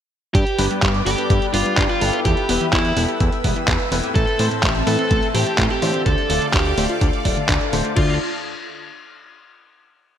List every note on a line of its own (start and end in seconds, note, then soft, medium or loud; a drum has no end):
0.35 0.45 G2 loud
0.35 0.63 G4 medium
0.35 0.40 G4 medium
0.35 4.12 B4 medium
0.35 2.23 D5 medium
0.35 4.12 G5 medium
0.35 2.23 D6 medium
0.35 kick loud
0.35 closed hi-hat medium
0.47 closed hi-hat soft
0.59 0.68 G1 loud
0.59 1.03 G2 medium
0.59 1.03 G3 medium
0.59 1.03 B3 medium
0.59 0.70 D4 medium
0.59 1.03 D4 medium
0.59 1.03 B4 loud
0.59 open hi-hat loud
0.71 0.82 G3 loud
0.71 closed hi-hat soft
0.82 1.02 G2 medium
0.82 0.88 G4 medium
0.82 kick loud
0.82 clap loud
0.82 closed hi-hat loud
0.94 closed hi-hat soft
1.06 1.16 G1 medium
1.06 1.51 G2 medium
1.06 1.51 G3 medium
1.06 1.51 B3 medium
1.06 1.51 D4 medium
1.06 1.18 D4 loud
1.06 1.44 G4 loud
1.06 1.51 A4 medium
1.06 open hi-hat loud
1.18 1.27 B4 loud
1.18 closed hi-hat soft
1.30 1.40 G2 loud
1.30 1.35 G4 medium
1.30 kick loud
1.30 closed hi-hat loud
1.42 closed hi-hat soft
1.53 1.64 G1 medium
1.53 1.99 G2 medium
1.53 1.99 G3 medium
1.53 1.99 B3 medium
1.53 1.65 D4 medium
1.53 1.99 D4 medium
1.53 1.82 F4 medium
1.53 1.99 B4 medium
1.53 open hi-hat loud
1.66 1.77 G3 loud
1.66 closed hi-hat soft
1.78 1.87 G2 loud
1.78 1.83 G4 medium
1.78 kick loud
1.78 clap loud
1.78 closed hi-hat loud
1.89 2.18 F4 medium
1.89 closed hi-hat soft
2.01 2.11 G1 loud
2.01 2.46 G3 medium
2.01 2.46 B3 medium
2.01 2.13 D4 loud
2.01 2.46 E4 medium
2.01 2.46 A4 loud
2.01 open hi-hat loud
2.13 2.22 B4 loud
2.13 closed hi-hat soft
2.25 2.35 E2 loud
2.25 2.31 E4 medium
2.25 2.64 G4 medium
2.25 6.03 E5 medium
2.25 6.02 E6 medium
2.25 kick loud
2.25 closed hi-hat loud
2.37 closed hi-hat soft
2.49 2.59 E1 loud
2.49 2.94 G3 medium
2.49 2.94 B3 medium
2.49 2.60 B3 medium
2.49 2.94 E4 medium
2.49 2.94 B4 loud
2.49 open hi-hat loud
2.61 2.72 E3 loud
2.61 closed hi-hat soft
2.73 2.92 E2 medium
2.73 3.01 E4 loud
2.73 2.78 E4 medium
2.73 kick loud
2.73 clap loud
2.73 closed hi-hat medium
2.85 closed hi-hat soft
2.97 3.06 E1 medium
2.97 3.41 G3 medium
2.97 3.08 B3 loud
2.97 3.42 B3 medium
2.97 3.41 E4 medium
2.97 3.41 A4 loud
2.97 open hi-hat loud
3.08 3.18 G4 loud
3.08 closed hi-hat soft
3.20 3.30 E2 loud
3.20 3.26 E4 medium
3.20 kick loud
3.20 closed hi-hat loud
3.32 closed hi-hat soft
3.44 3.54 E1 medium
3.44 3.89 G3 medium
3.44 3.56 B3 medium
3.44 3.89 B3 medium
3.44 3.89 E4 medium
3.44 3.89 B4 medium
3.44 kick medium
3.44 open hi-hat loud
3.56 3.67 E3 loud
3.56 closed hi-hat soft
3.68 3.78 E2 loud
3.68 3.73 E4 medium
3.68 kick loud
3.68 clap loud
3.68 closed hi-hat medium
3.80 closed hi-hat soft
3.92 4.02 E1 medium
3.92 4.37 A2 loud
3.92 4.37 A3 medium
3.92 4.03 B3 loud
3.92 4.37 C4 medium
3.92 4.37 E4 medium
3.92 4.37 B4 loud
3.92 open hi-hat loud
4.04 4.13 G4 loud
4.04 closed hi-hat soft
4.15 4.25 A1 loud
4.15 4.21 A3 medium
4.15 6.04 C4 medium
4.15 4.44 A4 loud
4.15 6.04 A5 medium
4.15 kick loud
4.15 closed hi-hat medium
4.27 closed hi-hat soft
4.39 4.49 A2 loud
4.39 4.84 A2 medium
4.39 4.51 E3 medium
4.39 4.84 A3 medium
4.39 4.84 C4 medium
4.39 4.84 E4 medium
4.39 4.84 C5 loud
4.39 open hi-hat loud
4.51 4.63 A2 loud
4.51 closed hi-hat soft
4.63 4.83 A1 medium
4.63 4.69 A3 medium
4.63 kick loud
4.63 clap loud
4.63 closed hi-hat medium
4.75 closed hi-hat soft
4.87 4.97 A2 medium
4.87 5.32 A2 medium
4.87 4.98 E3 loud
4.87 5.32 A3 medium
4.87 5.32 C4 medium
4.87 5.32 E4 medium
4.87 5.25 A4 loud
4.87 5.32 B4 loud
4.87 open hi-hat loud
4.99 5.08 C4 loud
4.99 closed hi-hat soft
5.11 5.21 A1 loud
5.11 5.16 A3 medium
5.11 kick loud
5.11 closed hi-hat medium
5.23 closed hi-hat soft
5.34 5.44 A2 medium
5.34 5.80 A2 medium
5.34 5.46 E3 medium
5.34 5.80 A3 medium
5.34 5.80 C4 medium
5.34 5.80 E4 medium
5.34 5.64 G4 loud
5.34 5.80 C5 medium
5.34 open hi-hat loud
5.46 5.58 A2 loud
5.46 closed hi-hat soft
5.58 5.68 A1 loud
5.58 5.64 A3 medium
5.58 kick loud
5.58 clap loud
5.58 closed hi-hat medium
5.70 5.99 G4 medium
5.70 closed hi-hat soft
5.82 5.92 A2 loud
5.82 6.27 D3 loud
5.82 5.94 E3 loud
5.82 6.27 A3 medium
5.82 6.27 D4 medium
5.82 6.27 F4 medium
5.82 6.27 C5 loud
5.82 open hi-hat loud
5.94 6.03 C4 loud
5.94 closed hi-hat soft
6.06 6.16 D2 loud
6.06 6.11 D4 medium
6.06 6.44 A4 medium
6.06 7.95 A4 medium
6.06 7.95 D5 medium
6.06 7.95 F5 medium
6.06 7.95 D6 medium
6.06 kick loud
6.06 closed hi-hat medium
6.18 closed hi-hat soft
6.30 6.40 D1 loud
6.30 6.75 D3 medium
6.30 6.41 A3 medium
6.30 6.75 A3 medium
6.30 6.75 D4 medium
6.30 6.75 F4 medium
6.30 6.75 D5 loud
6.30 open hi-hat loud
6.42 6.53 D3 loud
6.42 closed hi-hat soft
6.53 6.73 D2 loud
6.53 6.59 D4 medium
6.53 6.82 G4 loud
6.53 kick loud
6.53 clap loud
6.53 closed hi-hat medium
6.66 closed hi-hat soft
6.77 6.87 D1 medium
6.77 7.22 D3 medium
6.77 6.89 A3 loud
6.77 7.22 A3 medium
6.77 7.22 D4 medium
6.77 7.22 F4 medium
6.77 7.22 C5 loud
6.77 open hi-hat loud
6.89 6.99 F4 loud
6.89 closed hi-hat soft
7.01 7.11 D2 loud
7.01 7.07 D4 medium
7.01 kick loud
7.01 closed hi-hat medium
7.13 closed hi-hat soft
7.25 7.35 D1 medium
7.25 7.70 D3 medium
7.25 7.36 A3 medium
7.25 7.70 A3 medium
7.25 7.70 D4 medium
7.25 7.70 F4 medium
7.25 7.70 D5 medium
7.25 kick medium
7.25 open hi-hat loud
7.37 7.48 D3 loud
7.37 closed hi-hat soft
7.49 7.59 D2 loud
7.49 7.54 D4 medium
7.49 kick loud
7.49 clap loud
7.49 closed hi-hat medium
7.61 closed hi-hat soft
7.73 7.83 D1 loud
7.73 8.18 D3 loud
7.73 7.84 A3 loud
7.73 7.95 A3 medium
7.73 7.95 D4 medium
7.73 7.95 F4 medium
7.73 8.18 C5 loud
7.73 open hi-hat loud
7.84 7.94 F4 loud
7.84 closed hi-hat soft
7.96 8.19 D2 loud
7.96 8.14 A3 medium
7.96 8.19 D4 medium
7.96 8.14 D4 medium
7.96 8.19 D4 medium
7.96 8.14 F4 medium
7.96 8.19 F4 medium
7.96 8.19 A4 medium
7.96 8.14 D5 medium
7.96 8.19 F5 medium
7.96 8.19 A5 medium
7.96 kick loud
7.96 crash medium